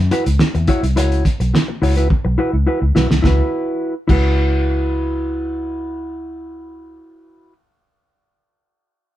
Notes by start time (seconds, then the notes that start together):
0.00 F#2
0.11 E4 F#4 B4, closed hi-hat
0.26 C#2, muted clean electric guitar stroke, closed hi-hat
0.39 muted clean electric guitar stroke, snare
0.55 E2, muted clean electric guitar stroke, closed hi-hat
0.68 E4 F#4 C#5, kick, closed hi-hat
0.83 C2, muted clean electric guitar stroke, closed hi-hat
0.96 C#2 E4 F#4 C#5, closed hi-hat
1.12 closed hi-hat
1.25 kick, closed hi-hat
1.40 B1, muted clean electric guitar stroke, closed hi-hat
1.54 muted clean electric guitar stroke, snare
1.68 muted clean electric guitar stroke
1.82 C#2 E4 F#4 C#5, open hi-hat
1.97 E4 F#4 B4, closed hi-hat
2.10 muted clean electric guitar stroke, kick
2.25 B1, muted clean electric guitar stroke
2.38 E4 F#4 B4
2.53 C#2, muted clean electric guitar stroke
2.67 E4 F#4 B4
2.82 C#2, muted clean electric guitar stroke
2.95 B1 E4 F#4 B4, snare
3.10 C2, muted clean electric guitar stroke, snare
3.22 C#2 E4 F#4, kick, snare
3.27 B4
4.08 C#2 E4 F#4, kick, crash
4.13 B4